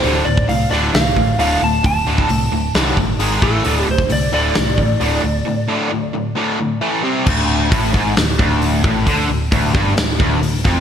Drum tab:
CC |----------------|----------------|----------------|----------------|
HH |o---o---o---o---|o---o---o---o---|o---o---o---o---|----------------|
SD |------o-o-------|--------o-------|--------o-------|----------------|
BD |---o------o-----|o--o------o---o-|---o------o-----|----------------|

CC |x---------------|----------------|
HH |----o---o---o---|o---o---o---o---|
SD |--------o-------|--------o-----o-|
BD |o---o-o---o---o-|o---o-o---o---o-|